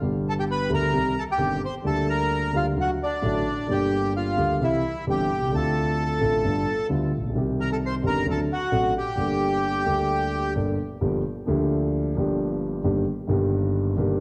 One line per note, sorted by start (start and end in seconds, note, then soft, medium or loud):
0.00 0.68 G1 medium
0.00 0.67 G2 medium
0.00 0.67 D3 medium
0.00 0.67 G3 medium
0.00 0.68 B3 medium
0.00 0.68 G4 medium
0.29 0.33 A4 medium
0.29 0.34 A5 medium
0.40 0.44 G4 medium
0.40 0.44 G5 medium
0.51 0.71 B4 medium
0.51 0.71 B5 medium
0.70 0.90 D2 medium
0.70 0.90 D3 medium
0.70 0.90 G3 medium
0.70 0.90 B3 soft
0.70 0.90 G4 medium
0.74 1.15 A#4 medium
0.74 1.20 A#5 medium
0.93 1.13 C2 medium
0.93 1.13 C3 medium
0.93 1.13 D#3 medium
0.93 1.13 G3 medium
0.93 1.13 C4 soft
0.93 1.13 G4 medium
1.19 1.24 A4 medium
1.19 1.23 A5 medium
1.31 1.62 G4 medium
1.31 1.62 G5 medium
1.38 1.58 G1 medium
1.38 1.58 G2 medium
1.38 1.58 D#3 medium
1.38 1.58 G3 soft
1.38 1.58 C4 medium
1.38 1.58 G4 medium
1.65 1.75 C5 medium
1.65 1.75 C6 medium
1.84 2.50 D2 medium
1.84 2.50 D3 medium
1.84 2.50 G3 medium
1.84 2.50 A#3 soft
1.84 2.51 G4 medium
1.84 2.07 A4 medium
1.84 2.10 A5 medium
2.10 2.52 A#4 medium
2.10 2.56 A#5 medium
2.53 2.73 D2 medium
2.53 2.73 D3 medium
2.53 2.73 G3 soft
2.53 2.73 A#3 soft
2.53 2.66 F4 medium
2.53 2.73 G4 medium
2.53 2.66 F5 medium
2.76 2.96 D2 medium
2.76 2.96 D3 medium
2.76 2.96 F#3 medium
2.76 2.96 A3 soft
2.76 2.96 F#4 medium
2.81 2.91 F#4 medium
2.81 2.90 F#5 medium
3.03 3.68 D4 medium
3.03 3.73 D5 medium
3.22 3.43 A1 medium
3.22 3.42 A2 medium
3.22 3.42 D3 medium
3.22 3.42 F#3 medium
3.22 3.42 A3 soft
3.22 3.42 F#4 medium
3.67 4.35 G1 medium
3.67 4.35 G2 medium
3.67 4.34 D3 medium
3.67 4.34 G3 soft
3.67 4.35 A#3 medium
3.71 4.36 G4 medium
3.71 4.14 G4 medium
3.71 4.13 G5 medium
4.17 4.59 F4 medium
4.17 4.63 F5 medium
4.37 4.57 D2 medium
4.37 4.57 D3 medium
4.37 4.57 G3 soft
4.37 4.57 A#3 soft
4.37 4.57 G4 medium
4.60 4.80 C2 medium
4.60 4.80 C3 medium
4.60 4.80 E3 medium
4.60 4.80 G3 soft
4.60 4.80 C4 medium
4.60 5.05 E4 medium
4.60 4.81 G4 medium
4.60 5.05 E5 medium
5.07 5.27 G1 medium
5.07 5.26 G2 medium
5.07 5.27 E3 medium
5.07 5.27 G3 medium
5.07 5.27 C4 medium
5.07 5.26 G4 medium
5.07 5.56 G5 medium
5.11 5.52 G4 medium
5.37 5.42 B1 soft
5.42 5.47 C2 medium
5.47 5.53 C#2 medium
5.51 6.18 D2 medium
5.51 6.18 D3 medium
5.51 6.18 A3 medium
5.51 6.19 C4 soft
5.51 6.19 F4 medium
5.51 6.87 A5 medium
5.57 6.88 A4 medium
6.21 6.40 A1 medium
6.21 6.41 A2 medium
6.21 6.41 D3 medium
6.21 6.40 A3 soft
6.21 6.41 C4 medium
6.21 6.41 F4 medium
6.44 6.63 G1 medium
6.44 6.64 G2 medium
6.44 6.63 D3 medium
6.44 6.63 G3 medium
6.44 6.63 B3 soft
6.44 6.64 F4 medium
6.89 7.09 D2 medium
6.89 7.09 D3 medium
6.89 7.09 G3 medium
6.89 7.09 B3 medium
6.89 7.09 F4 medium
7.17 7.24 A1 soft
7.24 7.30 A#1 medium
7.29 7.35 B1 medium
7.34 8.00 C2 medium
7.34 8.00 C3 medium
7.34 7.99 D#3 medium
7.34 8.00 G3 medium
7.34 8.01 C4 medium
7.34 8.01 G4 medium
7.60 7.70 A#4 medium
7.60 7.70 A#5 medium
7.72 7.77 A4 medium
7.72 7.77 A5 medium
7.86 7.95 C5 medium
7.86 7.95 C6 medium
8.03 8.23 G1 medium
8.03 8.23 G2 medium
8.03 8.23 D#3 medium
8.03 8.23 G3 soft
8.03 8.23 C4 medium
8.03 8.23 G4 medium
8.03 8.26 A#4 medium
8.03 8.27 A#5 medium
8.26 8.45 D2 medium
8.26 8.45 D3 medium
8.26 8.45 F#3 medium
8.26 8.45 C4 medium
8.26 8.46 D4 medium
8.26 8.46 A4 medium
8.26 8.39 A4 medium
8.31 8.41 A5 medium
8.52 8.93 F#4 medium
8.52 8.94 F#5 medium
8.72 8.91 A1 medium
8.72 8.91 A2 medium
8.72 8.91 F#3 medium
8.72 8.91 C4 medium
8.72 8.91 D4 medium
8.72 8.91 A4 medium
8.98 10.53 G4 medium
8.98 10.54 G5 medium
9.15 9.82 G1 medium
9.15 9.83 G2 medium
9.15 9.82 G3 medium
9.15 9.82 A#3 medium
9.15 9.83 D4 medium
9.20 9.84 A4 medium
9.84 10.52 D2 medium
9.84 10.52 D3 medium
9.84 10.51 G3 soft
9.84 10.51 A#3 soft
9.84 10.52 D4 soft
9.88 10.53 A4 medium
10.55 10.75 G1 medium
10.55 10.75 G2 medium
10.55 10.75 G3 medium
10.55 10.75 A#3 medium
10.55 10.75 D4 medium
10.55 10.75 A4 medium
11.01 11.21 G1 medium
11.01 11.20 G2 medium
11.01 11.21 F3 medium
11.01 11.21 A#3 medium
11.01 11.21 D4 medium
11.01 11.21 G4 medium
11.46 12.13 D2 medium
11.46 12.13 D3 medium
11.46 12.12 F3 medium
11.46 12.12 A#3 medium
11.46 12.13 D4 medium
11.50 12.14 G4 medium
12.15 12.82 G1 medium
12.15 12.81 G2 medium
12.15 12.80 F3 medium
12.15 12.81 A#3 medium
12.15 12.82 D4 medium
12.19 12.82 G4 medium
12.84 13.04 G1 medium
12.84 13.03 G2 medium
12.84 13.03 D#3 medium
12.84 13.04 G3 medium
12.84 13.04 A#3 medium
12.84 13.04 G4 medium
13.27 13.94 G1 medium
13.27 13.29 G2 medium
13.27 13.94 G2 medium
13.27 13.94 D#3 medium
13.27 13.94 G3 medium
13.27 13.95 A#3 medium
13.27 13.95 G4 medium
13.96 14.20 G1 medium
13.96 13.97 G2 medium
13.96 14.20 G2 medium
13.96 14.20 D#3 medium
13.96 14.20 G3 medium
13.96 14.20 A#3 medium
14.00 14.20 G4 medium